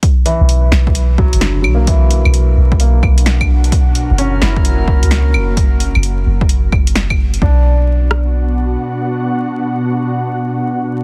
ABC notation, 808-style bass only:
X:1
M:4/4
L:1/16
Q:"Swing 16ths" 1/4=130
K:Bm
V:1 name="808-style bass" clef=bass
z3 B,,,3 B,,,4- B,,, F,,,3 B,,,2- | B,,,3 B,,,3 B,,,4 B,,,6 | z3 F,,,3 F,,,4- F,,, C,,3 F,,,2- | F,,,3 F,,,3 F,,,4 F,,,6 |
B,,,12 z4 | z16 |]